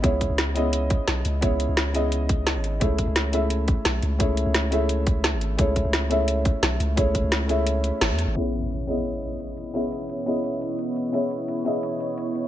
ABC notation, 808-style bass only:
X:1
M:4/4
L:1/16
Q:1/4=173
K:C#m
V:1 name="808-style bass" clef=bass
C,,3 C,,8 z B,,,2 C,,2- | C,,3 C,,8- C,,2 G,,,3 | C,,3 C,,8 z B,,,2 C,,2- | C,,3 C,,8- C,,2 G,,,3 |
C,,3 C,,8 z B,,,2 C,,2- | C,,3 C,,8 z G,,, E,,2 G,,, | z16 | z16 |
z16 |]